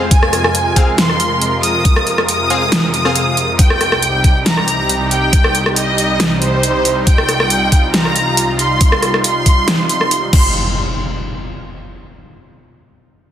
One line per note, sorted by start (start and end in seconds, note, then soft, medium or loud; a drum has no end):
0.00 3.55 F2 medium
0.00 10.29 C3 medium
0.00 3.55 G#3 medium
0.00 3.55 F4 medium
0.00 downlifter medium
0.11 3.56 A#4 medium
0.11 0.90 G#5 loud
0.11 kick loud
0.11 closed hi-hat medium
0.23 cross-stick medium
0.33 cross-stick medium
0.33 closed hi-hat medium
0.44 cross-stick medium
0.55 closed hi-hat medium
0.76 0.96 C4 medium
0.76 0.96 G#4 medium
0.76 0.96 F5 medium
0.76 kick medium
0.76 closed hi-hat medium
0.98 1.55 C6 loud
0.98 snare loud
0.98 closed hi-hat medium
1.09 cross-stick medium
1.20 closed hi-hat medium
1.42 closed hi-hat medium
1.63 2.20 D#6 medium
1.63 closed hi-hat soft
1.85 kick loud
1.85 closed hi-hat medium
1.96 cross-stick medium
2.07 closed hi-hat soft
2.18 cross-stick medium
2.29 2.85 D#6 medium
2.29 closed hi-hat medium
2.50 2.63 C4 medium
2.50 2.63 G#4 medium
2.50 2.63 F5 medium
2.50 closed hi-hat medium
2.72 snare loud
2.72 closed hi-hat medium
2.94 3.51 D#6 medium
2.94 closed hi-hat soft
3.05 3.58 C4 medium
3.05 3.58 G#4 medium
3.05 3.58 F5 loud
3.05 cross-stick medium
3.16 closed hi-hat medium
3.37 closed hi-hat medium
3.59 10.29 C2 medium
3.59 10.29 G3 medium
3.59 10.29 D#4 medium
3.59 7.03 G4 medium
3.59 4.38 G5 loud
3.59 kick loud
3.59 closed hi-hat medium
3.70 cross-stick medium
3.81 cross-stick medium
3.81 closed hi-hat medium
3.92 cross-stick medium
4.02 closed hi-hat medium
4.24 kick medium
4.24 closed hi-hat medium
4.46 5.03 A#5 medium
4.46 snare loud
4.46 closed hi-hat medium
4.57 cross-stick medium
4.68 closed hi-hat medium
4.89 closed hi-hat medium
5.11 5.68 G5 medium
5.11 closed hi-hat medium
5.33 kick loud
5.33 closed hi-hat medium
5.44 cross-stick medium
5.55 closed hi-hat medium
5.66 cross-stick medium
5.76 6.33 D#5 medium
5.76 closed hi-hat medium
5.98 closed hi-hat medium
6.20 snare loud
6.20 closed hi-hat medium
6.42 6.99 C5 medium
6.42 closed hi-hat medium
6.63 closed hi-hat medium
6.85 closed hi-hat medium
7.07 10.30 F4 medium
7.07 7.86 G5 loud
7.07 kick loud
7.07 closed hi-hat medium
7.18 cross-stick medium
7.29 cross-stick medium
7.29 closed hi-hat medium
7.40 cross-stick medium
7.50 closed hi-hat medium
7.72 kick medium
7.72 closed hi-hat medium
7.94 8.51 A#5 medium
7.94 snare loud
7.94 closed hi-hat medium
8.05 cross-stick medium
8.16 closed hi-hat medium
8.37 closed hi-hat medium
8.59 9.16 C6 loud
8.59 closed hi-hat medium
8.81 kick loud
8.81 closed hi-hat medium
8.92 cross-stick medium
9.03 cross-stick medium
9.03 closed hi-hat medium
9.14 cross-stick medium
9.24 9.81 C6 loud
9.24 closed hi-hat medium
9.46 kick medium
9.46 closed hi-hat medium
9.68 snare loud
9.68 closed hi-hat medium
9.89 10.32 C6 loud
9.89 closed hi-hat medium
10.01 cross-stick medium
10.11 closed hi-hat medium
10.33 10.53 G#3 medium
10.33 10.53 C4 medium
10.33 10.53 F4 medium
10.33 10.49 C6 medium
10.33 kick loud
10.33 crash medium
10.33 impact medium